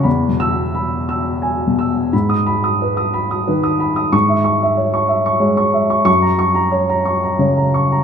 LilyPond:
<<
  \new Staff \with { instrumentName = "Upright piano" } { \time 3/4 \key gis \minor \tempo 4 = 90 << { r8 e'''8. r4. r16 | r16 dis'''8 r2 r16 | cis'''8 r2 r8 | cis'''8 r2 r8 | } \\ { b''8. r16 b''8 e'''8 gis''8 e'''8 | b''8 b''16 dis'''16 b'16 dis'''16 b''16 dis'''16 b'16 dis'''16 b''16 dis'''16 | r16 e''16 cis'''16 e''16 cis''16 cis'''16 e''16 cis'''16 cis''16 cis'''16 e''16 cis'''16 | r16 ais''16 cis'''16 ais''16 cis''16 ais''16 cis'''16 ais''16 cis''16 ais''16 cis'''16 ais''16 | } >> }
  \new Staff \with { instrumentName = "Upright piano" } { \clef bass \time 3/4 \key gis \minor \tuplet 3/2 { e,8 b,4 } r4 \tuplet 3/2 { r8 b,4 } | gis,2 dis4 | gis,2 gis4 | fis,2 cis4 | }
>>